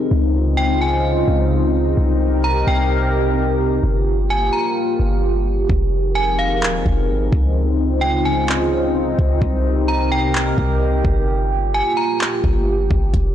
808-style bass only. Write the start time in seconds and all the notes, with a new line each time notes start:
0.11 C#2
1.28 C#2
1.97 C2
2.67 C2
3.83 G1
5.00 G1
5.69 F1
6.62 D#1
6.74 F1
6.86 F1
7.09 G#1
7.32 C#2
9.19 C#2
9.42 C2
10.58 C2
11.05 G1
12.44 G1
12.91 G1
13.14 F1